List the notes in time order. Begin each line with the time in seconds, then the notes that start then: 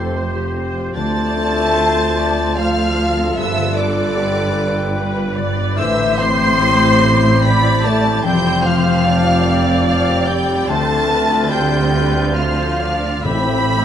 Already playing: F1 F2 C3 F3 C4 F4 G4 A4 C5 G5 C6
0.15 C5
0.35 G4
0.55 C4 C5
0.77 F4
0.94 D2 D3 A3 F4 C5 D5 A5 A6
1.16 A3
1.36 C4
1.56 F4
1.75 A4 C5
1.97 C5
2.17 D5
2.38 A5
2.56 F3 A4 C5 F5 F6
2.78 F4
2.98 A3
3.17 C4
3.35 G1 G2 F3 B4 E5 E6
3.57 D3
3.75 D3 B3 D5 D6
3.97 F4
4.16 G4
4.36 B4
4.57 F5
4.76 G5
4.95 B4
5.16 F4
5.36 D3 D5
5.56 B3
5.76 A1 A2 E3 E4 G4 C5 E5 E6
6.00 E3
6.19 C4 C6 C7
6.41 E4
6.62 G4
6.83 C5
7.03 E5
7.23 G5
7.42 C4 C5 D5 B5 B6
7.63 E4
7.84 E3 A3 A5 A6
8.04 C4
8.24 F1 F2 F3 G3 C4 C5 G5 G6
8.45 C4
8.65 F3 F4 F5 F6
8.86 G4
9.06 C5 D5
9.26 F5
9.47 G5
9.86 F3 F5 F6
10.08 G4
10.25 G3 C4 G5 G6
10.29 G5
10.49 F4
10.68 D2 D3 A3 F4 C5 A5 A6
10.90 A3
11.09 C4 B4
11.30 F4
11.49 G3 A4 C5 G5 G6
11.72 D5
11.93 B4 F5
12.15 A5
12.33 F3 C5 F5 F6
12.38 F5
12.58 F4
12.80 A3 D5
13.02 C4
13.24 A1 A2 C4 G4 E5 B5 B6
13.48 E3
13.69 C4